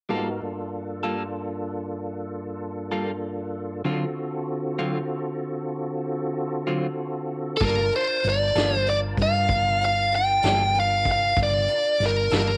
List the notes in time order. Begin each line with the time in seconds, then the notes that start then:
0.09 G#2 G3 A#3 B3 D#4 F4 F#4 A4 A#4
0.41 G2 A#3 D4 F4 A4
1.03 G3 A#3 F4 A4
2.92 G3 A#3 F4 A4
3.85 D3 F#3 C4 F4 F#4 A4
4.79 D3 F#3 C4 F4
6.67 D3 F#3 C4 F4
7.57 G1 G3 A4, kick, closed hi-hat
7.61 A#3 D4 F4 A4 A#4 A5
7.92 C5, closed hi-hat
8.24 G1, closed hi-hat
8.29 D5
8.55 G1 G3 A#3 F4 A4, snare, closed hi-hat
8.76 C5
8.86 D5, closed hi-hat
9.17 G2, kick, closed hi-hat
9.22 F5
9.49 G1, kick, closed hi-hat
9.81 closed hi-hat
9.85 F5
10.12 G5, closed hi-hat
10.43 G1 G3 A#3 F4 A4, snare, closed hi-hat
10.74 closed hi-hat
10.80 F5
11.05 kick, closed hi-hat
11.12 F5
11.37 G1 D4 F4 A#4 A5, kick, closed hi-hat
11.43 D5
11.68 closed hi-hat
12.00 G1, snare, closed hi-hat
12.06 A#4
12.30 G1 G3 A#3 F4 A4, snare, closed hi-hat
12.37 A#4